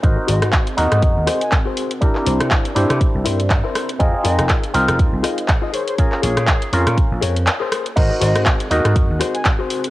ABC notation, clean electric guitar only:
X:1
M:4/4
L:1/16
Q:"Swing 16ths" 1/4=121
K:Abmix
V:1 name="Clean electric guitar"
z2 [GAc]3 z4 z [GAc] z2 [GAc]2 z | z2 [=EBc]3 z4 z [EBc] z2 [EBc]2 z | z2 [FAB]3 z4 z [FAe] z2 [FAe] [ABd]2 | z2 [ABd]3 z4 z [ABd] z2 [ABc]2 z |
z2 [GAc]3 z4 z [GAc] z2 [GAc]2 z |]